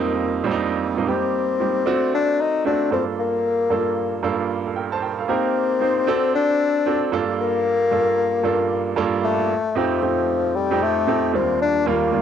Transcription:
Already playing: F2 G3 A3 A#3 C4 D#4
0.44 F2 G3 A#3 C4 D4
0.51 D#4
0.97 F2 G3 A#3 C4 D#4
1.07 G3 A#3 C4 D#4 G4
1.60 G3 A#3 D#4 G4
1.86 A3 C4 D4 F#4
2.15 D4
2.41 D#4
2.65 A3 C4 D4 F#4
2.91 G2 A#3 C4 D4 F4 A4
3.19 A#3
3.70 G2 A#3 D4 F4 A4
4.23 G2 A#3 D4 F4 A4
4.66 A4 F5
4.76 A#4 G5
4.92 C5 A5
5.02 A#4 G5
5.19 A4 F5
5.28 A#3 C4 D#4 G4 A#4
5.80 A#3 D#4 G4 C5
6.07 C4 D4 F#4 A4
6.35 D4
6.86 C4 D4 F#4 A4
7.12 G2 A#3 D4 F4 A4
7.41 A#3
7.91 G2 A#3 D4 F4 A4
8.44 G2 A#3 D4 F4 A4
8.96 G2 A#3 D4 F4 A4
9.24 A3
9.75 F2 F3 A3 C4 D#4 G4
10.02 F2 A3 C4 D#4 G4
10.56 G3
10.71 F2 A3 C4 D#4 G4
10.83 A3
11.07 F2 A3 C4 D#4 G4
11.33 D#2 G3 A#3 C4 D4 F4
11.62 D4
11.86 D#2 G3 A#3 D4 F4
12.12 D#2 G3 A#3 D4 F4

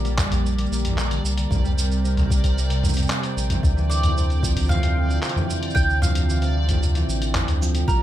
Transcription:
Already playing: A#1 D3 A#3 G4 D5
0.04 G3, closed hi-hat, cabasa
0.18 kick, clap, mid tom, cabasa
0.31 kick, closed hi-hat, cabasa
0.44 D3, cabasa
0.58 closed hi-hat, cabasa
0.66 cabasa
0.71 A#1 A#3, cabasa
0.79 cabasa
0.84 D3, closed hi-hat, mid tom, cabasa
0.89 mid tom
0.94 G3, mid tom
0.98 clap, cabasa
1.10 D3, closed hi-hat, cabasa
1.24 C2 A#3, cabasa
1.37 D3, closed hi-hat, cabasa
1.51 C2 C3 C4 A#4 G5, kick, mid tom, cabasa
1.64 G3, cabasa
1.78 cabasa
1.91 cabasa
2.04 C3, cabasa
2.17 closed hi-hat, mid tom, cabasa
2.30 A#3, kick, cabasa
2.43 C3, kick, closed hi-hat, cabasa
2.57 G3, cabasa
2.70 C3, closed hi-hat, cabasa
2.83 C3, mid tom, cabasa
2.89 cabasa
2.93 C3, closed hi-hat, cabasa
2.98 cabasa
3.02 cabasa
3.07 A#3, clap, cabasa
3.11 cabasa
3.23 C4, closed hi-hat, cabasa
3.36 A#1, cabasa
3.50 E3, closed hi-hat, mid tom, cabasa
3.63 D2 C3 D3, kick, cabasa
3.77 E3, cabasa
3.90 D5, cabasa
4.03 closed hi-hat, mid tom, cabasa
4.16 C3, cabasa
4.30 closed hi-hat, cabasa
4.43 F3, kick, cabasa
4.56 C3, kick, closed hi-hat, cabasa
4.60 cabasa
4.62 cabasa
4.64 cabasa
4.66 cabasa
4.69 E3 F5, mid tom, cabasa
4.71 cabasa
4.83 C3, closed hi-hat, cabasa
4.96 F3
5.09 C3, cabasa
5.23 C3, clap, cabasa
5.29 closed hi-hat
5.36 E3, mid tom, cabasa
5.50 cabasa
5.63 closed hi-hat
5.70 cabasa
5.75 D2 C3 G5, kick, cabasa
5.90 cabasa
6.02 F3 F5, mid tom, cabasa
6.15 C3, closed hi-hat, cabasa
6.29 E3, cabasa
6.42 C3, closed hi-hat, cabasa
6.55 F3
6.68 C3, kick, closed hi-hat, mid tom, cabasa
6.82 C3, cabasa
6.95 E3, closed hi-hat, cabasa
7.08 A1, cabasa
7.22 closed hi-hat, cabasa
7.35 C3, clap, mid tom, cabasa
7.48 D2, closed hi-hat, cabasa
7.61 F3, cabasa
7.75 C3, closed hi-hat, cabasa
7.88 A#1 G3 A#3 G4 A#4 D5, kick, cabasa

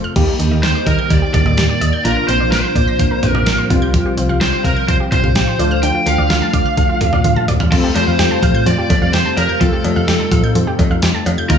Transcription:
Already playing: C3 F3 A3 C4 F4
0.04 F6
0.16 D#2 D#3 G3 A#3 D#4 G4, kick, closed hi-hat, crash
0.28 G4
0.39 D#2 D4, closed hi-hat
0.51 D#2 D#5
0.63 D#2 G4 C5, snare, closed hi-hat
0.75 D6
0.87 D#3 A#4 D#5, kick, closed hi-hat
0.99 G6
1.10 D#2 D#3 D5, kick, closed hi-hat
1.22 G4
1.34 D#2 D4 D5, kick, closed hi-hat, mid tom
1.46 D#2 D#5, mid tom
1.57 D#2 G4, snare, closed hi-hat
1.69 D6
1.81 D#2 D#5, closed hi-hat
1.93 G6
2.05 A#1 C3 D3 F3 A#3 D4 F4 A#4, closed hi-hat
2.17 A#4
2.28 A#1 C4 C5, closed hi-hat
2.40 A#1 D5
2.52 A#1 A#4 C5, snare, closed hi-hat
2.64 C6
2.76 A#2 D5, kick, closed hi-hat
2.88 A#6
2.99 A#1 D3, kick, closed hi-hat
3.11 A#4
3.23 A#1 C4, closed hi-hat, mid tom
3.30 A#4
3.35 A#1 D5, mid tom
3.46 A#1 A#4, snare, closed hi-hat
3.58 C6
3.70 C2 G3 C4 F4 F5, kick, closed hi-hat
3.82 G6
3.94 F3, kick, closed hi-hat
4.06 G4
4.17 C2 C4, closed hi-hat
4.29 C2 F5
4.41 C2 G4 C5, snare, closed hi-hat
4.53 C6
4.65 C3 A#4 F5, kick, closed hi-hat
4.77 G6
4.88 C2 F3 C5, kick, closed hi-hat
5.00 G4
5.12 C2 C4 C5, kick, closed hi-hat, mid tom
5.24 C2 F5, mid tom
5.35 C2 G4, snare, closed hi-hat
5.47 C6
5.59 D2 D3 A3 D4 F4 D5, closed hi-hat
5.71 F6
5.83 D3 G5, closed hi-hat
5.95 F4
6.06 D2 A3 F5, closed hi-hat
6.18 D2 D5
6.30 D2 F4 F5, snare, closed hi-hat
6.42 A5
6.54 D3 D5, kick, closed hi-hat
6.66 F6
6.77 D2 D3, kick, closed hi-hat
6.89 F4
7.01 D2 A3, closed hi-hat, mid tom
7.13 D2 D5, mid tom
7.24 D2 F4, closed hi-hat, high tom
7.36 A5, mid tom
7.48 D2 D5, closed hi-hat, mid tom
7.60 F6, floor tom
7.72 F2 C3 F3 G3 A3 C4 F4 A4, kick, closed hi-hat, crash
7.84 G4
7.95 F2 A3 C5, closed hi-hat, cowbell
8.07 F2 F5
8.19 F2 G4, snare, closed hi-hat
8.31 A5
8.43 F3 F5, kick, closed hi-hat, mid tom
8.55 G6
8.66 F2 F3 D5, closed hi-hat
8.78 G4
8.90 F2 A3, kick, closed hi-hat, cowbell
9.02 F2 F5
9.13 F2 G4 C5, snare, closed hi-hat
9.25 A5
9.37 F2 A#4 F5, closed hi-hat, cowbell
9.49 G6
9.61 F2 F3 A3 C4 D#4 F4 A4, kick, closed hi-hat
9.73 G4
9.84 F2 A3, closed hi-hat, cowbell
9.96 F2 F5
10.08 F2 G4, snare, closed hi-hat
10.20 A5
10.32 F3 F5, kick, closed hi-hat, mid tom
10.44 G6
10.55 F2 F3, closed hi-hat
10.67 G4
10.79 F2 A3, kick, closed hi-hat, cowbell
10.91 F2 F5
11.02 F2 G4, snare, closed hi-hat
11.14 A5
11.26 F2 F5, closed hi-hat, cowbell
11.38 G6
11.50 D#2 D#3 F3 A#3 D#4 F4 A#4, kick, closed hi-hat

